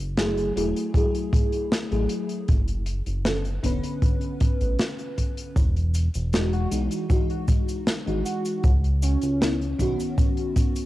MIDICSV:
0, 0, Header, 1, 5, 480
1, 0, Start_track
1, 0, Key_signature, 4, "major"
1, 0, Tempo, 769231
1, 1553, Time_signature, 4, 2, 24, 8
1, 6775, End_track
2, 0, Start_track
2, 0, Title_t, "Soft synth lead"
2, 0, Program_c, 0, 80
2, 4073, Note_on_c, 0, 66, 91
2, 4167, Note_off_c, 0, 66, 0
2, 5146, Note_on_c, 0, 66, 95
2, 5439, Note_off_c, 0, 66, 0
2, 5629, Note_on_c, 0, 61, 98
2, 6111, Note_off_c, 0, 61, 0
2, 6775, End_track
3, 0, Start_track
3, 0, Title_t, "FM electric piano"
3, 0, Program_c, 1, 5
3, 110, Note_on_c, 1, 54, 89
3, 113, Note_on_c, 1, 57, 81
3, 117, Note_on_c, 1, 64, 84
3, 119, Note_on_c, 1, 68, 100
3, 323, Note_off_c, 1, 54, 0
3, 325, Note_off_c, 1, 57, 0
3, 327, Note_off_c, 1, 64, 0
3, 328, Note_off_c, 1, 68, 0
3, 347, Note_on_c, 1, 54, 86
3, 350, Note_on_c, 1, 57, 79
3, 353, Note_on_c, 1, 64, 77
3, 357, Note_on_c, 1, 68, 91
3, 562, Note_off_c, 1, 54, 0
3, 563, Note_off_c, 1, 57, 0
3, 565, Note_off_c, 1, 64, 0
3, 567, Note_off_c, 1, 68, 0
3, 585, Note_on_c, 1, 54, 76
3, 593, Note_on_c, 1, 57, 69
3, 597, Note_on_c, 1, 64, 69
3, 604, Note_on_c, 1, 68, 81
3, 1163, Note_off_c, 1, 54, 0
3, 1167, Note_off_c, 1, 57, 0
3, 1169, Note_off_c, 1, 64, 0
3, 1173, Note_off_c, 1, 68, 0
3, 1193, Note_on_c, 1, 54, 78
3, 1197, Note_on_c, 1, 57, 69
3, 1199, Note_on_c, 1, 64, 72
3, 1202, Note_on_c, 1, 68, 89
3, 1537, Note_off_c, 1, 54, 0
3, 1539, Note_off_c, 1, 57, 0
3, 1540, Note_off_c, 1, 64, 0
3, 1541, Note_off_c, 1, 68, 0
3, 2027, Note_on_c, 1, 50, 80
3, 2030, Note_on_c, 1, 59, 73
3, 2034, Note_on_c, 1, 61, 76
3, 2038, Note_on_c, 1, 69, 90
3, 2095, Note_off_c, 1, 50, 0
3, 2096, Note_off_c, 1, 59, 0
3, 2098, Note_off_c, 1, 61, 0
3, 2100, Note_off_c, 1, 69, 0
3, 2265, Note_on_c, 1, 50, 90
3, 2272, Note_on_c, 1, 59, 82
3, 2276, Note_on_c, 1, 61, 87
3, 2284, Note_on_c, 1, 71, 103
3, 3455, Note_off_c, 1, 50, 0
3, 3459, Note_off_c, 1, 59, 0
3, 3460, Note_off_c, 1, 61, 0
3, 3464, Note_off_c, 1, 71, 0
3, 3950, Note_on_c, 1, 52, 90
3, 3951, Note_on_c, 1, 56, 83
3, 3954, Note_on_c, 1, 63, 79
3, 3958, Note_on_c, 1, 66, 98
3, 4163, Note_off_c, 1, 52, 0
3, 4164, Note_off_c, 1, 56, 0
3, 4165, Note_off_c, 1, 63, 0
3, 4168, Note_off_c, 1, 66, 0
3, 4187, Note_on_c, 1, 52, 84
3, 4189, Note_on_c, 1, 56, 77
3, 4192, Note_on_c, 1, 63, 73
3, 4196, Note_on_c, 1, 66, 90
3, 4402, Note_off_c, 1, 52, 0
3, 4403, Note_off_c, 1, 56, 0
3, 4404, Note_off_c, 1, 63, 0
3, 4406, Note_off_c, 1, 66, 0
3, 4423, Note_on_c, 1, 52, 74
3, 4429, Note_on_c, 1, 56, 68
3, 4434, Note_on_c, 1, 63, 70
3, 4440, Note_on_c, 1, 66, 85
3, 5002, Note_off_c, 1, 52, 0
3, 5005, Note_off_c, 1, 56, 0
3, 5007, Note_off_c, 1, 63, 0
3, 5010, Note_off_c, 1, 66, 0
3, 5030, Note_on_c, 1, 52, 76
3, 5032, Note_on_c, 1, 56, 73
3, 5037, Note_on_c, 1, 63, 70
3, 5040, Note_on_c, 1, 66, 83
3, 5375, Note_off_c, 1, 52, 0
3, 5376, Note_off_c, 1, 56, 0
3, 5379, Note_off_c, 1, 63, 0
3, 5381, Note_off_c, 1, 66, 0
3, 5870, Note_on_c, 1, 51, 84
3, 5871, Note_on_c, 1, 59, 77
3, 5876, Note_on_c, 1, 61, 76
3, 5879, Note_on_c, 1, 64, 91
3, 5936, Note_off_c, 1, 51, 0
3, 5937, Note_off_c, 1, 59, 0
3, 5939, Note_off_c, 1, 61, 0
3, 5941, Note_off_c, 1, 64, 0
3, 6106, Note_on_c, 1, 51, 91
3, 6113, Note_on_c, 1, 59, 84
3, 6119, Note_on_c, 1, 61, 84
3, 6125, Note_on_c, 1, 66, 102
3, 6775, Note_off_c, 1, 51, 0
3, 6775, Note_off_c, 1, 59, 0
3, 6775, Note_off_c, 1, 61, 0
3, 6775, Note_off_c, 1, 66, 0
3, 6775, End_track
4, 0, Start_track
4, 0, Title_t, "Analog synth bass"
4, 0, Program_c, 2, 38
4, 0, Note_on_c, 2, 30, 93
4, 318, Note_off_c, 2, 30, 0
4, 348, Note_on_c, 2, 28, 93
4, 451, Note_off_c, 2, 28, 0
4, 1194, Note_on_c, 2, 33, 94
4, 1290, Note_off_c, 2, 33, 0
4, 1552, Note_on_c, 2, 30, 101
4, 1880, Note_off_c, 2, 30, 0
4, 1913, Note_on_c, 2, 30, 96
4, 2237, Note_off_c, 2, 30, 0
4, 2269, Note_on_c, 2, 28, 93
4, 2372, Note_off_c, 2, 28, 0
4, 2878, Note_on_c, 2, 33, 87
4, 2972, Note_off_c, 2, 33, 0
4, 3470, Note_on_c, 2, 28, 102
4, 3799, Note_off_c, 2, 28, 0
4, 3838, Note_on_c, 2, 28, 96
4, 4159, Note_off_c, 2, 28, 0
4, 4193, Note_on_c, 2, 35, 90
4, 4294, Note_off_c, 2, 35, 0
4, 5037, Note_on_c, 2, 32, 98
4, 5132, Note_off_c, 2, 32, 0
4, 5389, Note_on_c, 2, 37, 98
4, 5718, Note_off_c, 2, 37, 0
4, 5756, Note_on_c, 2, 37, 94
4, 6078, Note_off_c, 2, 37, 0
4, 6110, Note_on_c, 2, 35, 91
4, 6212, Note_off_c, 2, 35, 0
4, 6775, End_track
5, 0, Start_track
5, 0, Title_t, "Drums"
5, 107, Note_on_c, 9, 42, 68
5, 108, Note_on_c, 9, 38, 121
5, 170, Note_off_c, 9, 42, 0
5, 171, Note_off_c, 9, 38, 0
5, 233, Note_on_c, 9, 42, 50
5, 295, Note_off_c, 9, 42, 0
5, 355, Note_on_c, 9, 42, 98
5, 417, Note_off_c, 9, 42, 0
5, 477, Note_on_c, 9, 42, 64
5, 539, Note_off_c, 9, 42, 0
5, 587, Note_on_c, 9, 36, 119
5, 592, Note_on_c, 9, 42, 70
5, 650, Note_off_c, 9, 36, 0
5, 654, Note_off_c, 9, 42, 0
5, 715, Note_on_c, 9, 42, 51
5, 778, Note_off_c, 9, 42, 0
5, 829, Note_on_c, 9, 36, 113
5, 833, Note_on_c, 9, 42, 87
5, 892, Note_off_c, 9, 36, 0
5, 895, Note_off_c, 9, 42, 0
5, 951, Note_on_c, 9, 42, 57
5, 1014, Note_off_c, 9, 42, 0
5, 1073, Note_on_c, 9, 38, 127
5, 1076, Note_on_c, 9, 42, 62
5, 1135, Note_off_c, 9, 38, 0
5, 1139, Note_off_c, 9, 42, 0
5, 1197, Note_on_c, 9, 42, 42
5, 1260, Note_off_c, 9, 42, 0
5, 1306, Note_on_c, 9, 42, 88
5, 1369, Note_off_c, 9, 42, 0
5, 1430, Note_on_c, 9, 42, 59
5, 1493, Note_off_c, 9, 42, 0
5, 1549, Note_on_c, 9, 42, 64
5, 1552, Note_on_c, 9, 36, 127
5, 1611, Note_off_c, 9, 42, 0
5, 1615, Note_off_c, 9, 36, 0
5, 1670, Note_on_c, 9, 42, 46
5, 1733, Note_off_c, 9, 42, 0
5, 1785, Note_on_c, 9, 42, 89
5, 1847, Note_off_c, 9, 42, 0
5, 1911, Note_on_c, 9, 42, 64
5, 1974, Note_off_c, 9, 42, 0
5, 2029, Note_on_c, 9, 38, 122
5, 2029, Note_on_c, 9, 42, 70
5, 2091, Note_off_c, 9, 38, 0
5, 2092, Note_off_c, 9, 42, 0
5, 2152, Note_on_c, 9, 42, 46
5, 2215, Note_off_c, 9, 42, 0
5, 2268, Note_on_c, 9, 36, 57
5, 2271, Note_on_c, 9, 42, 105
5, 2331, Note_off_c, 9, 36, 0
5, 2333, Note_off_c, 9, 42, 0
5, 2393, Note_on_c, 9, 42, 71
5, 2456, Note_off_c, 9, 42, 0
5, 2509, Note_on_c, 9, 36, 110
5, 2510, Note_on_c, 9, 42, 67
5, 2572, Note_off_c, 9, 36, 0
5, 2572, Note_off_c, 9, 42, 0
5, 2627, Note_on_c, 9, 42, 43
5, 2689, Note_off_c, 9, 42, 0
5, 2748, Note_on_c, 9, 42, 88
5, 2751, Note_on_c, 9, 36, 103
5, 2810, Note_off_c, 9, 42, 0
5, 2813, Note_off_c, 9, 36, 0
5, 2875, Note_on_c, 9, 42, 58
5, 2937, Note_off_c, 9, 42, 0
5, 2987, Note_on_c, 9, 42, 65
5, 2991, Note_on_c, 9, 38, 127
5, 3049, Note_off_c, 9, 42, 0
5, 3054, Note_off_c, 9, 38, 0
5, 3111, Note_on_c, 9, 42, 44
5, 3174, Note_off_c, 9, 42, 0
5, 3230, Note_on_c, 9, 42, 87
5, 3232, Note_on_c, 9, 36, 56
5, 3292, Note_off_c, 9, 42, 0
5, 3294, Note_off_c, 9, 36, 0
5, 3353, Note_on_c, 9, 42, 67
5, 3415, Note_off_c, 9, 42, 0
5, 3469, Note_on_c, 9, 36, 117
5, 3472, Note_on_c, 9, 69, 45
5, 3473, Note_on_c, 9, 42, 57
5, 3531, Note_off_c, 9, 36, 0
5, 3534, Note_off_c, 9, 69, 0
5, 3535, Note_off_c, 9, 42, 0
5, 3597, Note_on_c, 9, 42, 43
5, 3659, Note_off_c, 9, 42, 0
5, 3708, Note_on_c, 9, 69, 74
5, 3712, Note_on_c, 9, 42, 97
5, 3770, Note_off_c, 9, 69, 0
5, 3774, Note_off_c, 9, 42, 0
5, 3832, Note_on_c, 9, 42, 60
5, 3835, Note_on_c, 9, 69, 46
5, 3894, Note_off_c, 9, 42, 0
5, 3898, Note_off_c, 9, 69, 0
5, 3949, Note_on_c, 9, 42, 67
5, 3953, Note_on_c, 9, 69, 49
5, 3956, Note_on_c, 9, 38, 122
5, 4011, Note_off_c, 9, 42, 0
5, 4016, Note_off_c, 9, 69, 0
5, 4018, Note_off_c, 9, 38, 0
5, 4074, Note_on_c, 9, 42, 40
5, 4136, Note_off_c, 9, 42, 0
5, 4190, Note_on_c, 9, 42, 90
5, 4192, Note_on_c, 9, 69, 77
5, 4252, Note_off_c, 9, 42, 0
5, 4254, Note_off_c, 9, 69, 0
5, 4311, Note_on_c, 9, 42, 60
5, 4316, Note_on_c, 9, 69, 52
5, 4373, Note_off_c, 9, 42, 0
5, 4378, Note_off_c, 9, 69, 0
5, 4429, Note_on_c, 9, 36, 109
5, 4429, Note_on_c, 9, 69, 43
5, 4430, Note_on_c, 9, 42, 62
5, 4491, Note_off_c, 9, 36, 0
5, 4492, Note_off_c, 9, 69, 0
5, 4493, Note_off_c, 9, 42, 0
5, 4554, Note_on_c, 9, 42, 40
5, 4616, Note_off_c, 9, 42, 0
5, 4667, Note_on_c, 9, 69, 66
5, 4668, Note_on_c, 9, 36, 106
5, 4669, Note_on_c, 9, 42, 85
5, 4730, Note_off_c, 9, 36, 0
5, 4730, Note_off_c, 9, 69, 0
5, 4732, Note_off_c, 9, 42, 0
5, 4795, Note_on_c, 9, 42, 59
5, 4796, Note_on_c, 9, 69, 53
5, 4857, Note_off_c, 9, 42, 0
5, 4859, Note_off_c, 9, 69, 0
5, 4911, Note_on_c, 9, 38, 120
5, 4912, Note_on_c, 9, 69, 49
5, 4913, Note_on_c, 9, 42, 67
5, 4973, Note_off_c, 9, 38, 0
5, 4975, Note_off_c, 9, 42, 0
5, 4975, Note_off_c, 9, 69, 0
5, 5038, Note_on_c, 9, 42, 42
5, 5100, Note_off_c, 9, 42, 0
5, 5151, Note_on_c, 9, 69, 70
5, 5154, Note_on_c, 9, 42, 87
5, 5214, Note_off_c, 9, 69, 0
5, 5217, Note_off_c, 9, 42, 0
5, 5273, Note_on_c, 9, 69, 54
5, 5275, Note_on_c, 9, 42, 67
5, 5336, Note_off_c, 9, 69, 0
5, 5337, Note_off_c, 9, 42, 0
5, 5387, Note_on_c, 9, 42, 63
5, 5390, Note_on_c, 9, 36, 110
5, 5391, Note_on_c, 9, 69, 41
5, 5450, Note_off_c, 9, 42, 0
5, 5452, Note_off_c, 9, 36, 0
5, 5453, Note_off_c, 9, 69, 0
5, 5516, Note_on_c, 9, 42, 43
5, 5578, Note_off_c, 9, 42, 0
5, 5630, Note_on_c, 9, 69, 73
5, 5634, Note_on_c, 9, 42, 94
5, 5692, Note_off_c, 9, 69, 0
5, 5696, Note_off_c, 9, 42, 0
5, 5749, Note_on_c, 9, 42, 65
5, 5756, Note_on_c, 9, 69, 50
5, 5812, Note_off_c, 9, 42, 0
5, 5819, Note_off_c, 9, 69, 0
5, 5876, Note_on_c, 9, 38, 118
5, 5876, Note_on_c, 9, 42, 59
5, 5876, Note_on_c, 9, 69, 42
5, 5938, Note_off_c, 9, 38, 0
5, 5938, Note_off_c, 9, 69, 0
5, 5939, Note_off_c, 9, 42, 0
5, 5998, Note_on_c, 9, 42, 45
5, 6060, Note_off_c, 9, 42, 0
5, 6110, Note_on_c, 9, 36, 56
5, 6111, Note_on_c, 9, 42, 91
5, 6113, Note_on_c, 9, 69, 71
5, 6172, Note_off_c, 9, 36, 0
5, 6173, Note_off_c, 9, 42, 0
5, 6176, Note_off_c, 9, 69, 0
5, 6238, Note_on_c, 9, 69, 48
5, 6240, Note_on_c, 9, 42, 68
5, 6301, Note_off_c, 9, 69, 0
5, 6303, Note_off_c, 9, 42, 0
5, 6351, Note_on_c, 9, 36, 114
5, 6353, Note_on_c, 9, 69, 47
5, 6355, Note_on_c, 9, 42, 66
5, 6414, Note_off_c, 9, 36, 0
5, 6415, Note_off_c, 9, 69, 0
5, 6417, Note_off_c, 9, 42, 0
5, 6471, Note_on_c, 9, 42, 46
5, 6534, Note_off_c, 9, 42, 0
5, 6589, Note_on_c, 9, 42, 95
5, 6590, Note_on_c, 9, 36, 106
5, 6593, Note_on_c, 9, 69, 73
5, 6652, Note_off_c, 9, 42, 0
5, 6653, Note_off_c, 9, 36, 0
5, 6656, Note_off_c, 9, 69, 0
5, 6713, Note_on_c, 9, 69, 55
5, 6714, Note_on_c, 9, 42, 64
5, 6775, Note_off_c, 9, 42, 0
5, 6775, Note_off_c, 9, 69, 0
5, 6775, End_track
0, 0, End_of_file